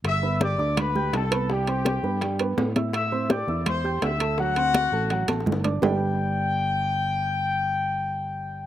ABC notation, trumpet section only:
X:1
M:4/4
L:1/8
Q:1/4=166
K:G
V:1 name="Trumpet section"
[ee']2 [dd']2 [Bb]2 [Aa]2 | [Gg]6 z2 | [ee']2 [dd']2 [cc']2 [ee']2 | [Ff]6 z2 |
g8- | g8 |]